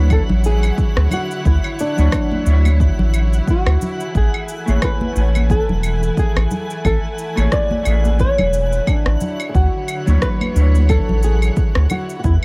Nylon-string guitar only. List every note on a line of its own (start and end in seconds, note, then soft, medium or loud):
0.00 0.12 B4 loud
0.13 0.21 A4 loud
0.46 1.09 G#4 loud
1.13 1.46 F#4 medium
1.47 1.81 E4 loud
1.81 3.11 D4 medium
3.50 4.17 F#4 medium
4.17 4.80 G#4 medium
4.85 5.51 B4 medium
5.51 6.19 A4 loud
6.19 6.85 G#4 loud
6.86 7.53 A4 loud
7.53 8.16 D5 loud
8.20 8.84 C#5 loud
8.88 9.51 D4 medium
9.49 9.55 G#4 medium
9.55 10.18 F#4 loud
10.22 10.89 B4 medium
10.90 11.24 A4 loud
11.24 11.91 G#4 loud
11.91 12.17 F#4 medium
12.19 12.24 F#4 medium
12.25 12.34 E4 medium